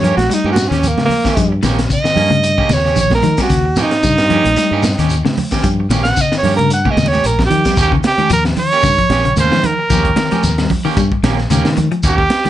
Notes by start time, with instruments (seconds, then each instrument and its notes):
Already playing: fingered electric bass G2
0.00 clean electric guitar F3, alto saxophone C#5, low conga
0.04 clean electric guitar A#3 C#4 G4, closed hi-hat, shekere
0.17 fingered electric bass A#1, alto saxophone F#4, muted clean electric guitar stroke, snare, closed hi-hat, high conga
0.30 clean electric guitar G3, alto saxophone D#4, muted clean electric guitar stroke, closed hi-hat, high conga, shekere
0.44 fingered electric bass G2, clean electric guitar A#3 C#4 G4, high conga
0.52 alto saxophone F#4
0.56 muted clean electric guitar stroke, snare, closed hi-hat, high conga, shekere
0.68 fingered electric bass D#2, clean electric guitar D#3, alto saxophone C#4, snare, closed hi-hat
0.72 clean electric guitar C#4 G4, shekere
0.83 closed hi-hat, low conga, shekere
0.88 alto saxophone A#3
0.98 clean electric guitar C#3, muted clean electric guitar stroke, snare, high conga
1.05 alto saxophone A#3
1.09 muted clean electric guitar stroke, open hi-hat, low conga, shekere
1.24 clean electric guitar D#3 C#4 G4, kick, snare, shekere
1.36 fingered electric bass G2, clean electric guitar F3, kick, closed hi-hat, shekere
1.52 muted clean electric guitar stroke
1.63 fingered electric bass A#1, clean electric guitar D#3 A#3 C#4 G4, snare, closed hi-hat, high conga, shekere
1.79 muted clean electric guitar stroke, snare, closed hi-hat, shekere
1.89 clean electric guitar C#3, kick, closed hi-hat, shekere
1.93 alto saxophone D#5
2.04 clean electric guitar D#3, muted clean electric guitar stroke, snare, shekere
2.16 fingered electric bass G2, clean electric guitar A#3 C#4, open hi-hat, low conga, shekere
2.30 clean electric guitar C#3, muted clean electric guitar stroke, closed hi-hat, high conga
2.43 muted clean electric guitar stroke, closed hi-hat, shekere
2.58 clean electric guitar C3 A#3 C#4 G4, kick
2.69 fingered electric bass D#2, clean electric guitar C#3, alto saxophone C#5, muted clean electric guitar stroke, snare, closed hi-hat, high conga, shekere
2.85 clean electric guitar C#4 G4, snare, shekere
2.96 fingered electric bass A#1, clean electric guitar D#3, closed hi-hat, low conga, shekere
3.00 alto saxophone C#5
3.10 alto saxophone A#4, muted clean electric guitar stroke, kick, snare, high conga
3.23 fingered electric bass D#3, clean electric guitar F3, muted clean electric guitar stroke, closed hi-hat, high conga, low conga, shekere
3.37 clean electric guitar G3 C#4 G4, kick, snare, closed hi-hat, shekere
3.42 alto saxophone F#4
3.49 fingered electric bass D#2, clean electric guitar C#3, kick, snare, closed hi-hat, shekere
3.65 muted clean electric guitar stroke
3.76 clean electric guitar A#3 C#4 G4, snare, closed hi-hat, high conga, low conga, shekere
3.82 alto saxophone D#4
3.91 muted clean electric guitar stroke, snare, closed hi-hat, shekere
4.03 fingered electric bass G2, clean electric guitar C#3, kick, closed hi-hat, shekere
4.18 muted clean electric guitar stroke, snare, shekere
4.30 clean electric guitar F3 A#3 C#4 G4, closed hi-hat, low conga, shekere
4.45 fingered electric bass A#1, muted clean electric guitar stroke, snare, closed hi-hat, high conga
4.56 clean electric guitar G3, muted clean electric guitar stroke, snare, closed hi-hat, high conga, shekere
4.71 fingered electric bass G2, clean electric guitar A#3 C#4 G4
4.83 muted clean electric guitar stroke, snare, closed hi-hat, high conga, shekere
4.97 fingered electric bass D#2, clean electric guitar D#3 C#4 G4, snare, closed hi-hat, shekere
5.09 closed hi-hat, shekere
5.25 clean electric guitar C#3, muted clean electric guitar stroke, snare, high conga
5.37 muted clean electric guitar stroke, open hi-hat, high conga, low conga, shekere
5.51 clean electric guitar D#3 C#4 G4, kick, snare, shekere
5.63 fingered electric bass G2, clean electric guitar F3, kick, closed hi-hat, shekere
5.80 muted clean electric guitar stroke
5.90 fingered electric bass A#1, clean electric guitar D#3 A#3 C#4 G4, snare, closed hi-hat, high conga, shekere
6.03 alto saxophone F#5, muted clean electric guitar stroke, snare, closed hi-hat, shekere
6.16 clean electric guitar C#3, kick, closed hi-hat, shekere
6.21 alto saxophone D#5
6.32 clean electric guitar D#3, muted clean electric guitar stroke, snare, shekere
6.38 alto saxophone C#5
6.43 fingered electric bass G2, clean electric guitar A#3 C#4 G4, open hi-hat, low conga, shekere
6.56 clean electric guitar C#3, alto saxophone A#4, muted clean electric guitar stroke, closed hi-hat, high conga
6.70 alto saxophone F#5, muted clean electric guitar stroke, closed hi-hat, shekere
6.85 clean electric guitar C3 A#3 C#4 G4, kick, high conga
6.91 alto saxophone D#5
6.97 fingered electric bass D#2, clean electric guitar C#3, muted clean electric guitar stroke, snare, closed hi-hat, high conga, shekere
7.06 alto saxophone C#5, high conga
7.12 clean electric guitar C#4 G4, snare, high conga, shekere
7.24 fingered electric bass A#1, alto saxophone A#4, closed hi-hat, shekere
7.39 muted clean electric guitar stroke, kick, snare, low conga
7.45 alto saxophone G4
7.50 fingered electric bass D#3, clean electric guitar F3, muted clean electric guitar stroke, closed hi-hat, low conga, shekere
7.65 clean electric guitar G3 G4, kick, snare, closed hi-hat, low conga, shekere
7.77 fingered electric bass D#2, clean electric guitar A#3 C#4 G4, kick, closed hi-hat, high conga, shekere
7.81 trumpet G4
7.92 clean electric guitar C#3, kick
8.03 trumpet G4, muted clean electric guitar stroke, snare, closed hi-hat, high conga, shekere
8.18 clean electric guitar D#3 C#4 G4, closed hi-hat, high conga
8.30 fingered electric bass D#2, clean electric guitar F3, trumpet A#4, muted clean electric guitar stroke, closed hi-hat, shekere
8.45 muted clean electric guitar stroke, snare, closed hi-hat
8.56 clean electric guitar D#3, trumpet C#5, muted clean electric guitar stroke, open hi-hat, low conga, shekere
8.72 clean electric guitar A#3 C#4 G4, closed hi-hat
8.83 fingered electric bass G2, clean electric guitar C#3, kick, closed hi-hat, shekere
8.98 clean electric guitar F3, muted clean electric guitar stroke, kick, closed hi-hat
9.09 fingered electric bass A#1, clean electric guitar A#3 C#4 G4, snare, closed hi-hat, high conga, low conga, shekere
9.25 clean electric guitar C#3, muted clean electric guitar stroke, closed hi-hat
9.36 fingered electric bass D#2, clean electric guitar A#3 C#4, trumpet C5, muted clean electric guitar stroke, closed hi-hat, high conga, shekere
9.51 fingered electric bass D#3, clean electric guitar F3, snare, high conga
9.63 clean electric guitar D#3, trumpet A#4, muted clean electric guitar stroke, closed hi-hat, low conga, shekere
9.79 muted clean electric guitar stroke
9.90 fingered electric bass D#2, clean electric guitar F3 A#3 C#4 G4, kick, snare, closed hi-hat, high conga, shekere
10.05 kick, closed hi-hat
10.16 clean electric guitar D#3, muted clean electric guitar stroke, snare, closed hi-hat, high conga, shekere
10.31 clean electric guitar F3 C#4 G4, snare, closed hi-hat, high conga
10.43 fingered electric bass D#2, muted clean electric guitar stroke, snare, closed hi-hat, high conga, shekere
10.58 clean electric guitar G3, muted clean electric guitar stroke, snare, closed hi-hat
10.70 muted clean electric guitar stroke, kick, open hi-hat, low conga, shekere
10.85 clean electric guitar D#3 A#3 C#4 G4
10.97 fingered electric bass G2, clean electric guitar G3, kick, closed hi-hat, shekere
11.12 muted clean electric guitar stroke, kick
11.23 fingered electric bass A#1, clean electric guitar D#3 A#3 C#4 G4, snare, closed hi-hat, high conga, shekere
11.38 muted clean electric guitar stroke, snare
11.50 fingered electric bass D#2, clean electric guitar C#3 A#3 C#4 G4, closed hi-hat, high conga, shekere
11.64 fingered electric bass D#3, snare, closed hi-hat, high conga
11.77 clean electric guitar D#3, muted clean electric guitar stroke, closed hi-hat, high conga, low conga, shekere
11.91 clean electric guitar F3, muted clean electric guitar stroke, closed hi-hat
12.03 fingered electric bass D#2, clean electric guitar A#3 C#4 G4, kick, closed hi-hat, high conga, shekere
12.07 trumpet G4
12.18 kick
12.30 muted clean electric guitar stroke, snare, closed hi-hat, high conga, shekere
12.45 clean electric guitar D#3 G4, snare, closed hi-hat, high conga